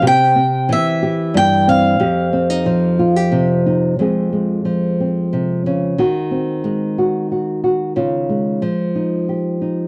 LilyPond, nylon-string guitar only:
\new Staff \with { instrumentName = "Nylon-string guitar" } { \time 3/4 \key f \minor \tempo 4 = 91 << { g'8 c'4 g'4 c'8 | g'8 c'16 ees'8. f'16 g'8. ees'8 | <f aes c' aes'>8 aes4 c'4. | ges'8 c'4 ges'8 ges'8 ges'8 |
f'8 aes4 ees'8 g'8 ees'8 | } \\ { c4 e4 g,4 | f,4 f4 c4 | f,4 f4 c8 des8 | ees4 aes2 |
des4 f2 | } >> }